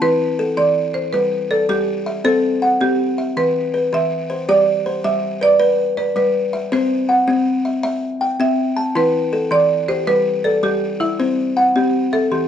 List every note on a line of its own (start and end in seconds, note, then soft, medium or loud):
0.00 0.39 E3 medium
0.00 0.58 E4 medium
0.00 0.59 B4 medium
0.00 0.21 A5 medium
0.39 0.95 A4 medium
0.57 0.95 E3 medium
0.57 0.96 D5 medium
0.94 1.14 C5 medium
1.13 1.51 G3 medium
1.13 1.51 B4 medium
1.51 1.70 A4 medium
1.51 2.07 D5 medium
1.69 2.06 G3 medium
1.69 2.27 G4 medium
2.06 2.44 E5 medium
2.24 2.62 C4 medium
2.24 2.77 A4 medium
2.24 2.81 C5 medium
2.62 3.18 F#5 medium
2.81 3.18 C4 medium
2.81 3.39 G4 medium
3.18 3.55 E5 medium
3.37 3.74 E3 medium
3.37 3.94 B4 medium
3.74 4.30 B4 medium
3.93 4.30 E3 medium
3.93 4.51 E5 medium
4.30 4.67 C5 medium
4.49 4.86 G3 medium
4.49 5.04 G4 medium
4.49 5.06 D5 medium
4.86 5.42 C5 medium
5.04 5.42 G3 medium
5.04 5.43 E5 medium
5.41 5.58 B4 medium
5.41 6.00 D5 medium
5.59 5.97 B4 medium
5.97 6.15 B4 medium
5.97 6.53 D5 medium
6.16 6.53 G3 medium
6.16 6.74 B4 medium
6.53 6.90 E5 medium
6.72 7.09 C4 medium
6.72 7.28 C5 medium
6.72 7.12 C5 medium
7.09 7.65 F#5 medium
7.28 7.65 C4 medium
7.65 7.82 E5 medium
7.83 8.21 E5 medium
8.21 8.77 G5 medium
8.40 8.77 C4 medium
8.40 8.98 E5 medium
8.76 9.14 A5 medium
8.95 9.33 E3 medium
8.95 9.51 E4 medium
8.95 9.54 B4 medium
9.33 9.89 A4 medium
9.51 9.88 E3 medium
9.51 9.90 D5 medium
9.88 10.26 G4 medium
9.88 9.97 C5 medium
10.07 10.45 G3 medium
10.07 10.46 B4 medium
10.44 10.64 A4 medium
10.44 11.01 D5 medium
10.63 11.01 G3 medium
10.63 11.02 G4 medium
11.00 11.77 E4 medium
11.00 11.38 E5 medium
11.20 11.57 C4 medium
11.20 11.76 C5 medium
11.57 12.13 F#5 medium
11.76 12.13 C4 medium
11.76 12.14 G4 medium
12.13 12.21 A4 medium
12.13 12.48 E5 medium
12.32 12.48 E3 medium
12.32 12.48 G4 medium